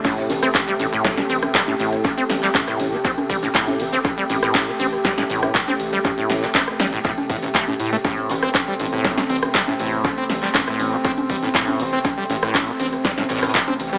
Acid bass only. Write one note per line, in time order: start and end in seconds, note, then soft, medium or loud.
0.05 0.31 A2 medium
0.30 0.34 C3 loud
0.43 0.49 C4 medium
0.68 0.74 G3 medium
0.80 0.87 A2 medium
0.93 1.19 A2 medium
1.18 1.22 C3 loud
1.30 1.37 C4 medium
1.55 1.62 G3 medium
1.68 1.74 A2 medium
1.80 2.06 A2 medium
2.05 2.09 C3 loud
2.18 2.24 C4 medium
2.43 2.49 G3 medium
2.55 2.62 A2 medium
2.68 2.94 A2 medium
2.93 2.97 C3 loud
3.05 3.12 C4 medium
3.30 3.37 G3 medium
3.43 3.49 A2 medium
3.55 3.81 A2 medium
3.80 3.84 C3 loud
3.93 3.99 C4 medium
4.18 4.24 G3 medium
4.30 4.37 A2 medium
4.43 4.69 A2 medium
4.68 4.72 C3 loud
4.80 4.87 C4 medium
5.05 5.12 G3 medium
5.18 5.24 A2 medium
5.30 5.56 A2 medium
5.55 5.59 C3 loud
5.68 5.74 C4 medium
5.93 5.99 G3 medium
6.05 6.12 A2 medium
6.18 6.44 A2 medium
6.43 6.47 C3 loud
6.55 6.62 C4 medium
6.80 6.87 G3 medium
6.93 6.99 A2 medium
7.05 7.12 A2 medium
7.30 7.37 A2 loud
7.43 7.49 A1 loud
7.55 7.65 A3 medium
7.68 7.74 A2 medium
7.80 7.90 A2 medium
7.93 7.97 A3 loud
8.05 8.31 A2 medium
8.30 8.34 C3 loud
8.43 8.49 C4 medium
8.68 8.74 G3 medium
8.80 8.87 A2 medium
8.93 9.19 A2 medium
9.18 9.22 C3 loud
9.30 9.37 C4 medium
9.55 9.62 G3 medium
9.68 9.74 A2 medium
9.80 10.06 A2 medium
10.05 10.09 C3 loud
10.18 10.24 C4 medium
10.43 10.49 G3 medium
10.55 10.62 A2 medium
10.68 10.94 A2 medium
10.93 10.97 C3 loud
11.05 11.12 C4 medium
11.30 11.37 G3 medium
11.43 11.49 A2 medium
11.55 11.81 A2 medium
11.80 11.84 C3 loud
11.93 11.99 C4 medium
12.18 12.24 G3 medium
12.30 12.37 A2 medium
12.43 12.69 A2 medium
12.68 12.72 C3 loud
12.80 12.87 C4 medium
13.05 13.12 G3 medium
13.18 13.24 A2 medium
13.30 13.56 A2 medium
13.55 13.59 C3 loud
13.68 13.74 C4 medium
13.93 13.98 G3 medium